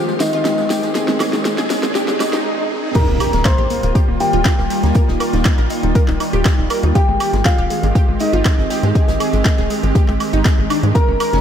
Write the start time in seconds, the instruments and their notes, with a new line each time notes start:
Already playing: ambient pad D#3 C4 G4, grand piano F3 F4, synth texture C6 C7, riser
0.08 synth pluck G#3, tambourine
0.20 grand piano D#3 D#4, synth pluck G#3, snare, closed hi-hat, open hi-hat, tambourine
0.33 synth pluck F4, closed hi-hat, tambourine
0.45 synth pluck G#3, snare, closed hi-hat, tambourine
0.58 synth pluck G#3, snare, tambourine
0.70 synth pluck G4, snare, closed hi-hat, open hi-hat, tambourine
0.83 synth pluck G#3, snare, closed hi-hat, tambourine
0.94 synth pluck G#4, ambient pad G#4, snare, closed hi-hat, tambourine
1.08 synth pluck G#3, snare, tambourine
1.20 synth pluck G#4, snare, closed hi-hat, open hi-hat, tambourine, high woodblock
1.33 synth pluck G#3, snare, closed hi-hat, tambourine
1.45 synth pluck G#3, snare, closed hi-hat, tambourine
1.58 synth pluck G#4, snare, closed hi-hat, tambourine
1.70 synth pluck G#3, snare, open hi-hat, tambourine
1.83 synth pluck G#3, snare, closed hi-hat, tambourine
1.95 synth pluck G4, snare, closed hi-hat, tambourine, swell
2.08 synth pluck G#3, snare, closed hi-hat, tambourine
2.20 synth pluck G#3, snare, closed hi-hat, open hi-hat, tambourine, high woodblock
2.33 synth pluck D#4, snare, closed hi-hat, tambourine
2.94 ambient pad D#3 G3 A#3 F4, synth pluck G4, grand piano A#4 A#5, kick, closed hi-hat, crash, impact
3.08 analog synth bass D#1, synth pluck A#3
3.20 synth pluck G4, closed hi-hat, open hi-hat, high woodblock
3.33 analog synth bass D#1, synth pluck A#3, snare, closed hi-hat
3.45 synth pluck A#3, grand piano C5 C6, kick, snare, clap, closed hi-hat
3.58 analog synth bass A#1, synth pluck G4, closed hi-hat
3.70 synth pluck A#3, closed hi-hat, open hi-hat
3.83 analog synth bass D#1, synth pluck A#3, closed hi-hat
3.95 synth pluck G4, kick, closed hi-hat
4.08 analog synth bass D#1, synth pluck A#3
4.20 synth pluck A#3, grand piano G4 G5, closed hi-hat, open hi-hat
4.33 analog synth bass D#1, synth pluck F4, closed hi-hat
4.45 synth pluck A#3, kick, snare, clap, closed hi-hat
4.58 analog synth bass D#1, synth pluck A#3, snare
4.70 synth pluck G4, closed hi-hat, open hi-hat
4.83 analog synth bass D#2, synth pluck A#3, snare, closed hi-hat
4.95 synth pluck A#4, kick, closed hi-hat
5.08 analog synth bass D#1, synth pluck D#4, snare
5.20 synth pluck A#4, closed hi-hat, open hi-hat, high woodblock
5.33 analog synth bass D#1, synth pluck D#4, snare, closed hi-hat
5.45 synth pluck D#4, kick, snare, clap, closed hi-hat
5.58 analog synth bass A#1, synth pluck A#4, snare, closed hi-hat
5.70 synth pluck D#4, closed hi-hat, open hi-hat
5.83 analog synth bass D#1, synth pluck D#4, closed hi-hat
5.95 synth pluck A#4, kick, closed hi-hat
6.08 analog synth bass D#1, synth pluck D#4, clap, closed hi-hat
6.20 synth pluck D#4, closed hi-hat, open hi-hat, high woodblock
6.33 analog synth bass D#1, synth pluck G4, closed hi-hat
6.45 synth pluck D#4, kick, snare, clap, closed hi-hat
6.58 analog synth bass D#1, synth pluck D#4
6.70 synth pluck A#4, closed hi-hat, open hi-hat, high woodblock
6.83 analog synth bass D#2, synth pluck D#4, closed hi-hat
6.95 ambient pad G#3 C4 G4, synth pluck G4, grand piano G4 G5, kick, closed hi-hat
7.08 analog synth bass G#1, synth pluck G#3
7.20 synth pluck G4, closed hi-hat, open hi-hat, high woodblock
7.33 analog synth bass G#1, synth pluck G#3, snare, closed hi-hat
7.45 synth pluck G#3, grand piano F4 F5, kick, snare, clap, closed hi-hat
7.58 analog synth bass D#1, synth pluck G4, closed hi-hat
7.70 synth pluck G#3, closed hi-hat, open hi-hat
7.83 analog synth bass G#1, synth pluck G#3, closed hi-hat
7.95 synth pluck G4, kick, closed hi-hat
8.08 analog synth bass G#1, synth pluck G#3
8.19 synth pluck G#3, grand piano D#4 D#5, closed hi-hat, open hi-hat
8.33 analog synth bass G#1, synth pluck F4, closed hi-hat
8.45 synth pluck G#3, kick, snare, clap, closed hi-hat
8.58 analog synth bass G#1, synth pluck G#3, snare
8.70 synth pluck G4, snare, closed hi-hat, open hi-hat
8.83 analog synth bass G#2, synth pluck G#3, snare, closed hi-hat
8.95 synth pluck G#4, kick, closed hi-hat
9.08 analog synth bass G#1, synth pluck G#3, snare, closed hi-hat
9.20 synth pluck G#4, snare, open hi-hat, high woodblock
9.33 analog synth bass G#1, synth pluck G#3, closed hi-hat
9.44 synth pluck G#3, kick, snare, clap, closed hi-hat
9.58 analog synth bass D#1, synth pluck G#4, snare, closed hi-hat
9.70 synth pluck G#3, closed hi-hat, open hi-hat
9.83 analog synth bass G#1, synth pluck G#3, closed hi-hat
9.95 synth pluck G4, kick, closed hi-hat
10.08 analog synth bass G#1, synth pluck G#3, clap, closed hi-hat
10.20 synth pluck G#3, closed hi-hat, open hi-hat, high woodblock
10.33 analog synth bass G#1, synth pluck D#4, closed hi-hat
10.45 synth pluck G#3, kick, snare, clap, closed hi-hat
10.58 analog synth bass G#1, synth pluck G#3
10.70 synth pluck D4, closed hi-hat, open hi-hat, high woodblock
10.83 analog synth bass G#2, synth pluck G#3, closed hi-hat
10.95 ambient pad C#3 A#3 F#4, grand piano A#4 A#5, synth pluck A#4, kick, closed hi-hat
11.08 analog synth bass F#1, synth pluck C#4
11.20 synth pluck A#4, closed hi-hat, open hi-hat, high woodblock
11.33 analog synth bass F#1, synth pluck C#4, snare, closed hi-hat